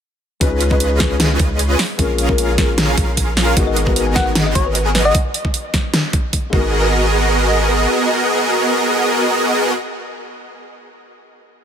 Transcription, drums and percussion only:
0.41 kick, closed hi-hat
0.61 closed hi-hat
0.71 kick
0.80 closed hi-hat
1.00 kick, snare, closed hi-hat
1.20 snare, closed hi-hat
1.39 kick, closed hi-hat
1.59 closed hi-hat
1.79 snare, open hi-hat
1.99 kick, closed hi-hat
2.18 closed hi-hat
2.29 kick
2.38 closed hi-hat
2.58 kick, snare, closed hi-hat
2.78 snare, closed hi-hat
2.98 kick, closed hi-hat
3.17 kick, closed hi-hat
3.37 snare, open hi-hat
3.57 kick, closed hi-hat
3.76 closed hi-hat
3.87 kick
3.96 closed hi-hat
4.16 kick, snare, closed hi-hat
4.35 snare, closed hi-hat
4.55 kick, closed hi-hat
4.75 closed hi-hat
4.95 snare, open hi-hat
5.15 kick, closed hi-hat
5.34 closed hi-hat
5.45 kick
5.54 closed hi-hat
5.74 kick, snare, closed hi-hat
5.94 snare, closed hi-hat
6.13 kick, closed hi-hat
6.33 kick, closed hi-hat
6.53 kick

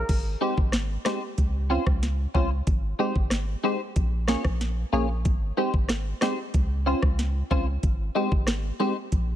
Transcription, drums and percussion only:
0.09 kick, closed hi-hat, crash
0.58 kick
0.72 cross-stick, snare, closed hi-hat
1.05 cross-stick, snare
1.38 kick, closed hi-hat
1.86 kick, cross-stick
2.03 snare, closed hi-hat
2.35 kick
2.67 kick, closed hi-hat
3.16 kick
3.30 cross-stick, snare, closed hi-hat
3.96 kick, closed hi-hat
4.28 cross-stick, snare
4.44 kick, cross-stick
4.61 snare, closed hi-hat
5.25 kick, closed hi-hat
5.58 high bongo
5.74 kick
5.89 cross-stick, snare, closed hi-hat, high bongo
6.21 cross-stick, snare, high bongo, low bongo
6.54 kick, closed hi-hat
7.02 kick, cross-stick
7.19 snare, closed hi-hat
7.51 kick, high bongo, low bongo
7.83 kick, closed hi-hat
8.16 high bongo
8.32 kick
8.47 cross-stick, snare, closed hi-hat, high bongo
8.80 high bongo, low bongo
9.12 kick, closed hi-hat

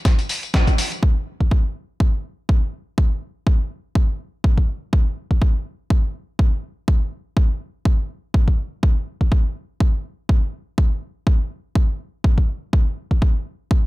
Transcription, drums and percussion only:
0.05 kick, snare, closed hi-hat, tambourine
0.19 closed hi-hat, tambourine
0.29 open hi-hat, tambourine
0.43 closed hi-hat, tambourine
0.54 kick, snare, closed hi-hat, tambourine
0.67 kick, closed hi-hat, tambourine
0.78 open hi-hat, tambourine
0.92 closed hi-hat, tambourine
1.03 kick
1.41 kick
1.51 kick
2.00 kick
2.49 kick
2.98 kick
3.47 kick
3.95 kick
4.44 kick
4.58 kick
4.93 kick
5.31 kick
5.42 kick
5.90 kick
6.39 kick
6.88 kick
7.37 kick
7.85 kick
8.34 kick
8.48 kick
8.83 kick
9.21 kick
9.32 kick
9.80 kick
10.29 kick
10.78 kick
11.27 kick
11.75 kick
12.24 kick
12.38 kick
12.73 kick
13.11 kick
13.22 kick
13.71 kick

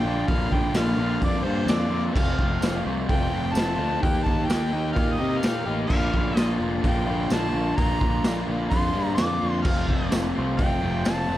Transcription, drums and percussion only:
0.28 kick, open hi-hat
0.52 kick
0.74 snare, open hi-hat, tambourine
1.22 kick, open hi-hat
1.68 snare, open hi-hat, tambourine
2.16 kick, crash
2.39 kick
2.62 snare, open hi-hat, tambourine
3.09 kick, open hi-hat
3.55 snare, open hi-hat, tambourine
4.03 kick, open hi-hat
4.26 kick
4.50 snare, open hi-hat, tambourine
4.96 kick, open hi-hat
5.43 snare, open hi-hat, tambourine
5.90 kick, crash
6.14 kick
6.37 snare, open hi-hat, tambourine
6.84 kick, open hi-hat
7.30 snare, open hi-hat, tambourine
7.78 kick, open hi-hat
8.01 kick
8.24 snare, open hi-hat, tambourine
8.71 kick, open hi-hat
9.18 snare, open hi-hat, tambourine
9.65 kick, crash
9.89 kick
10.12 snare, open hi-hat, tambourine
10.58 kick, open hi-hat
11.05 snare, open hi-hat, tambourine

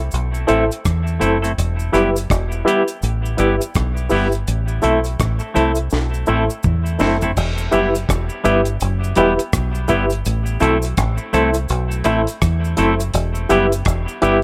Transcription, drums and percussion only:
0.11 closed hi-hat, cabasa
0.34 cabasa
0.48 closed hi-hat, cabasa
0.71 closed hi-hat, cabasa
0.85 kick, cross-stick, closed hi-hat, cabasa
1.07 cabasa
1.21 closed hi-hat, cabasa
1.44 closed hi-hat, cabasa
1.58 closed hi-hat, cabasa
1.79 cabasa
1.94 cross-stick, closed hi-hat, cabasa
2.16 closed hi-hat, cabasa
2.30 kick, cross-stick, closed hi-hat, cabasa
2.52 cabasa
2.68 closed hi-hat, cabasa
2.88 closed hi-hat, cabasa
3.02 closed hi-hat, cabasa
3.25 cabasa
3.38 closed hi-hat, cabasa
3.61 closed hi-hat, cabasa
3.75 kick, cross-stick, closed hi-hat, cabasa
3.97 cabasa
4.10 open hi-hat, cabasa
4.32 closed hi-hat, cabasa
4.47 closed hi-hat, cabasa
4.68 cabasa
4.82 closed hi-hat, cabasa
5.04 closed hi-hat, cabasa
5.20 kick, cross-stick, closed hi-hat, cabasa
5.39 cabasa
5.56 closed hi-hat, cabasa
5.75 closed hi-hat, cabasa
5.90 snare, cabasa
6.14 cabasa
6.26 cabasa
6.50 cabasa
6.63 kick, mid tom, cabasa
6.86 cabasa
6.99 snare, cabasa
7.21 floor tom, cabasa
7.37 crash, cabasa
7.58 cabasa
7.72 closed hi-hat, cabasa
7.95 closed hi-hat, cabasa
8.09 kick, cross-stick, closed hi-hat, cabasa
8.29 cabasa
8.45 closed hi-hat, cabasa
8.65 closed hi-hat, cabasa
8.80 closed hi-hat, cabasa
9.04 cabasa
9.15 closed hi-hat, cabasa
9.39 closed hi-hat, cabasa
9.53 kick, cross-stick, closed hi-hat, cabasa
9.75 cabasa
9.88 kick, closed hi-hat, cabasa
10.10 closed hi-hat, cabasa
10.25 closed hi-hat, cabasa
10.46 cabasa
10.60 closed hi-hat, cabasa
10.82 closed hi-hat, cabasa
10.97 kick, cross-stick, closed hi-hat, cabasa
11.18 cabasa
11.34 closed hi-hat, cabasa
11.54 closed hi-hat, cabasa
11.69 closed hi-hat, cabasa
11.91 cabasa
12.04 closed hi-hat, cabasa
12.27 closed hi-hat, cabasa
12.42 kick, cross-stick, closed hi-hat, cabasa
12.65 cabasa
12.77 closed hi-hat, cabasa
13.00 closed hi-hat, cabasa
13.14 closed hi-hat, cabasa
13.35 cabasa
13.50 closed hi-hat, cabasa
13.72 closed hi-hat, cabasa
13.85 kick, cross-stick, closed hi-hat, cabasa
14.08 cabasa
14.22 closed hi-hat, cabasa

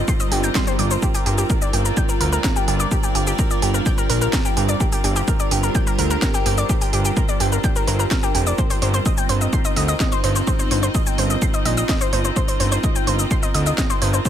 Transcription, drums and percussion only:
0.08 kick, shaker
0.20 shaker
0.32 open hi-hat
0.44 shaker
0.55 kick, snare, shaker
0.67 shaker
0.79 open hi-hat
0.91 shaker
1.02 kick, shaker
1.14 open hi-hat, shaker
1.26 open hi-hat
1.38 shaker
1.50 kick, shaker
1.62 shaker
1.73 open hi-hat
1.85 shaker
1.97 kick, shaker
2.09 shaker
2.21 open hi-hat
2.33 shaker
2.44 kick, snare, shaker
2.56 shaker
2.68 open hi-hat
2.80 shaker
2.91 kick, shaker
3.03 shaker
3.15 open hi-hat
3.27 shaker
3.39 kick, shaker
3.51 shaker
3.62 open hi-hat
3.74 shaker
3.86 kick, shaker
3.98 shaker
4.10 open hi-hat
4.22 shaker
4.33 kick, snare, shaker
4.45 shaker
4.57 open hi-hat
4.69 shaker
4.80 kick, shaker
4.92 open hi-hat, shaker
5.04 open hi-hat
5.16 shaker
5.28 kick, shaker
5.40 shaker
5.51 open hi-hat
5.63 shaker
5.75 kick, shaker
5.87 shaker
5.99 open hi-hat
6.11 shaker
6.22 kick, snare, shaker
6.34 shaker
6.46 open hi-hat
6.58 shaker
6.69 kick, shaker
6.81 open hi-hat, shaker
6.93 open hi-hat
7.05 shaker
7.17 kick, shaker
7.29 shaker
7.40 open hi-hat
7.52 shaker
7.64 kick, shaker
7.76 shaker
7.87 open hi-hat
7.99 shaker
8.11 kick, snare, shaker
8.23 shaker
8.35 open hi-hat
8.47 shaker
8.58 kick, shaker
8.70 open hi-hat, shaker
8.82 open hi-hat
8.94 shaker
9.06 kick, shaker
9.18 shaker
9.29 open hi-hat
9.41 shaker
9.53 kick, shaker
9.65 shaker
9.76 open hi-hat
9.88 shaker
10.00 kick, snare, shaker
10.12 shaker
10.24 open hi-hat
10.36 shaker
10.47 kick, shaker
10.59 shaker
10.71 open hi-hat
10.83 shaker
10.95 kick, shaker
11.07 shaker
11.18 open hi-hat
11.30 shaker
11.42 kick, shaker
11.54 shaker
11.65 open hi-hat
11.77 shaker
11.89 kick, snare, shaker
12.01 shaker
12.13 open hi-hat
12.25 shaker
12.36 kick, shaker
12.48 open hi-hat, shaker
12.60 open hi-hat
12.72 shaker
12.84 kick, shaker
12.96 shaker
13.07 open hi-hat
13.19 shaker
13.31 kick, shaker
13.43 shaker
13.54 open hi-hat
13.66 shaker
13.78 kick, snare, shaker
13.90 shaker
14.02 open hi-hat
14.14 shaker
14.25 kick, shaker

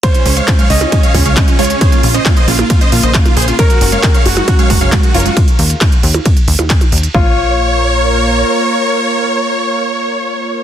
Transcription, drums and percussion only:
0.03 kick, closed hi-hat, ride
0.14 closed hi-hat
0.26 open hi-hat
0.37 closed hi-hat
0.48 kick, clap, closed hi-hat, ride
0.59 closed hi-hat
0.70 open hi-hat
0.81 closed hi-hat, percussion blips
0.92 kick, closed hi-hat, ride, percussion blips
1.03 closed hi-hat
1.14 kick, open hi-hat
1.26 closed hi-hat
1.37 kick, clap, closed hi-hat, ride
1.48 closed hi-hat
1.59 open hi-hat
1.64 closed hi-hat
1.70 closed hi-hat
1.81 kick, closed hi-hat, ride
1.92 closed hi-hat
2.03 open hi-hat
2.14 closed hi-hat
2.26 kick, clap, closed hi-hat, ride, percussion blips
2.37 closed hi-hat
2.48 open hi-hat
2.59 closed hi-hat, percussion blips
2.70 kick, closed hi-hat, ride
2.81 closed hi-hat
2.92 open hi-hat
3.03 closed hi-hat
3.14 kick, clap, closed hi-hat, ride
3.26 closed hi-hat, percussion blips
3.37 open hi-hat
3.42 closed hi-hat
3.48 closed hi-hat
3.59 kick, closed hi-hat, ride
3.70 closed hi-hat
3.81 open hi-hat
3.92 closed hi-hat
4.03 kick, clap, closed hi-hat, ride
4.14 closed hi-hat
4.26 open hi-hat
4.37 closed hi-hat, percussion blips
4.48 kick, closed hi-hat, ride, percussion blips
4.59 closed hi-hat
4.70 kick, open hi-hat
4.81 closed hi-hat
4.92 kick, clap, closed hi-hat, ride
5.03 closed hi-hat
5.14 open hi-hat
5.20 closed hi-hat
5.26 closed hi-hat
5.37 kick, closed hi-hat, ride
5.48 closed hi-hat
5.59 open hi-hat
5.70 closed hi-hat
5.81 kick, clap, closed hi-hat, ride, percussion blips
5.92 closed hi-hat
6.03 open hi-hat
6.14 closed hi-hat, percussion blips
6.26 kick, closed hi-hat, ride
6.37 closed hi-hat
6.48 open hi-hat
6.59 closed hi-hat, percussion blips
6.70 kick, clap, closed hi-hat, ride
6.81 closed hi-hat, percussion blips
6.92 open hi-hat
6.98 closed hi-hat
7.03 closed hi-hat
7.14 kick

